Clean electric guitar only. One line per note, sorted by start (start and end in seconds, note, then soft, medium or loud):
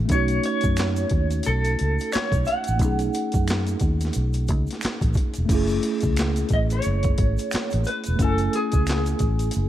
0.12 0.44 C#5 medium
0.46 1.42 C#5 medium
1.46 2.13 A4 medium
2.13 2.44 C#5 medium
2.47 4.78 F#5 medium
6.53 6.59 D#5 medium
6.73 7.82 C#5 medium
7.87 8.21 B4 medium
8.22 8.52 A4 medium
8.56 9.69 G#4 medium